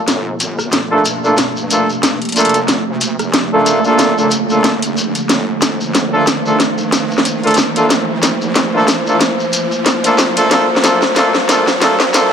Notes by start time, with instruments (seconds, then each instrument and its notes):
Already playing: ambient pad F3 A3 A#3 G4, riser
0.07 wobble bass G1, snare, closed hi-hat, shekere
0.40 wobble bass G1, closed hi-hat, shekere
0.59 cross-stick, shekere
0.72 snare, closed hi-hat, shekere
0.91 wobble bass G2, horn section A3 A#3 D4 F4 A4
1.05 closed hi-hat, shekere
1.24 wobble bass G2, horn section A3 A#3 D4 F4 A4, shekere
1.37 snare, closed hi-hat, shekere
1.56 shekere
1.70 wobble bass G2, horn section A3 A#3 D4 F4 A4, closed hi-hat, shekere
1.89 shekere
2.03 snare, closed hi-hat, shekere
2.22 closed hi-hat
2.25 closed hi-hat
2.29 closed hi-hat
2.32 horn section A3 A#3 D4 F4 A4, closed hi-hat
2.36 closed hi-hat, shekere
2.40 closed hi-hat
2.45 closed hi-hat
2.49 closed hi-hat
2.54 wobble bass G1, closed hi-hat, shekere
2.68 snare, closed hi-hat, shekere
2.87 wobble bass D2
3.01 closed hi-hat, shekere
3.19 wobble bass F1, cross-stick, closed hi-hat, shekere
3.34 snare, closed hi-hat, shekere
3.52 wobble bass G2, horn section A3 A#3 D4 F4 A4
3.66 closed hi-hat, shekere
3.84 wobble bass D2, horn section A3 A#3 D4 F4 A4, shekere
3.98 wobble bass G1, snare, closed hi-hat, shekere
4.17 horn section A3 A#3 D4 F4 A4, shekere
4.31 closed hi-hat, shekere
4.49 wobble bass G1, horn section A3 A#3 D4 F4 A4, shekere
4.64 snare, closed hi-hat, shekere
4.82 wobble bass F1, closed hi-hat, shekere
4.97 shekere
5.15 closed hi-hat, shekere
5.29 wobble bass G1, ambient pad C5, snare, closed hi-hat, shekere
5.62 wobble bass G1, snare, closed hi-hat, shekere
5.81 shekere
5.94 snare, closed hi-hat, shekere
6.13 wobble bass G2, horn section A3 A#3 D4 F4 A4
6.27 snare, closed hi-hat, shekere
6.45 wobble bass G2, horn section A3 A#3 D4 F4 A4, shekere
6.60 snare, closed hi-hat, shekere
6.78 shekere
6.92 wobble bass G2, snare, closed hi-hat, shekere
7.11 shekere
7.18 snare
7.25 closed hi-hat, shekere
7.43 horn section A3 A#3 D4 F4 A4, closed hi-hat
7.47 closed hi-hat
7.51 closed hi-hat
7.54 snare, closed hi-hat, shekere
7.76 wobble bass G1, horn section A3 A#3 D4 F4 A4, closed hi-hat, shekere
7.90 snare, closed hi-hat, shekere
8.09 wobble bass D2
8.23 snare, closed hi-hat, shekere
8.41 wobble bass F1, shekere
8.55 snare, closed hi-hat, shekere
8.74 wobble bass G2, horn section A3 A#3 D4 F4 A4
8.88 snare, closed hi-hat, shekere
9.06 horn section A3 A#3 D4 F4 A4, shekere
9.21 snare, closed hi-hat, shekere
9.39 shekere
9.53 closed hi-hat, shekere
9.71 shekere
9.86 snare, closed hi-hat, shekere
10.04 wobble bass C2, horn section A3 A#3 D4 F4 A4, closed hi-hat, shekere
10.18 snare, shekere
10.37 horn section A3 A#3 D4 F4 A4, closed hi-hat, shekere
10.51 wobble bass G1, horn section A3 A#3 D4 F4 A4, snare, closed hi-hat, shekere
10.76 snare
10.84 horn section A3 A#3 D4 F4 A4, snare, closed hi-hat, shekere
11.02 snare, shekere
11.16 horn section A3 A#3 D4 F4 A4, snare, closed hi-hat, shekere
11.35 wobble bass G2, snare
11.49 horn section A3 A#3 D4 F4 A4, snare, closed hi-hat, shekere
11.67 wobble bass G2, snare, shekere
11.81 horn section A3 A#3 D4 F4 A4, snare, closed hi-hat, shekere
12.00 snare, shekere
12.14 horn section A3 A#3 D4 F4 A4, snare, closed hi-hat, shekere